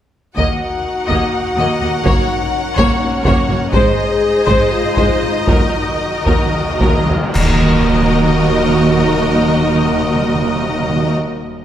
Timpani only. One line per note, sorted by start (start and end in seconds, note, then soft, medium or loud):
0.37 1.06 D#3 medium
5.65 5.72 D#3 soft
5.73 5.79 D#3 soft
5.88 5.96 D#3 soft
5.97 6.04 D#3 soft
6.05 6.11 D#3 soft
6.21 6.28 D#3 soft
6.29 6.37 D#3 medium
6.39 6.45 D#3 medium
6.46 6.53 D#3 medium
6.54 6.61 D#3 medium
6.62 6.70 D#3 medium
6.71 6.78 D#3 medium
6.80 6.87 D#3 medium
6.88 6.96 D#3 medium
6.97 7.05 D#3 medium
7.06 7.14 D#3 medium
7.15 7.23 D#3 medium
7.24 7.32 D#3 medium
7.36 7.43 D#3 medium
7.43 7.50 D#3 medium
7.50 7.56 D#3 medium
7.56 7.62 D#3 medium
7.62 7.69 D#3 medium
7.69 7.76 D#3 medium
7.76 7.82 D#3 medium
7.82 7.89 D#3 medium
7.89 7.95 D#3 medium
7.95 8.02 D#3 medium
8.02 8.09 D#3 medium
8.09 8.16 D#3 medium
8.16 8.23 D#3 medium
8.23 8.30 D#3 medium
8.30 8.37 D#3 medium
8.37 8.43 D#3 medium
8.43 8.50 D#3 medium
8.50 8.56 D#3 medium
8.56 8.62 D#3 medium
8.62 8.69 D#3 medium
8.69 8.75 D#3 medium
8.75 8.82 D#3 medium
8.82 8.89 D#3 medium
8.89 8.96 D#3 medium
8.96 9.02 D#3 medium
9.02 9.09 D#3 medium
9.09 9.16 D#3 medium
9.16 9.22 D#3 medium
9.22 9.29 D#3 medium
9.29 9.36 D#3 medium
9.36 9.42 D#3 medium
9.42 9.49 D#3 medium
9.49 9.55 D#3 medium
9.56 9.62 D#3 medium
9.62 9.68 D#3 medium
9.68 9.75 D#3 medium
9.75 9.82 D#3 medium
9.82 9.89 D#3 medium
9.89 9.95 D#3 medium
9.96 10.02 D#3 medium
10.02 10.09 D#3 medium
10.09 10.15 D#3 medium
10.15 10.22 D#3 medium
10.22 10.29 D#3 medium
10.29 10.35 D#3 medium
10.35 10.42 D#3 medium
10.43 10.49 D#3 medium
10.49 10.56 D#3 medium
10.56 10.62 D#3 medium
10.62 10.69 D#3 medium
10.69 10.76 D#3 medium
10.76 10.83 D#3 medium
10.83 10.89 D#3 medium
10.89 10.96 D#3 medium
10.97 11.03 D#3 medium
11.03 11.10 D#3 medium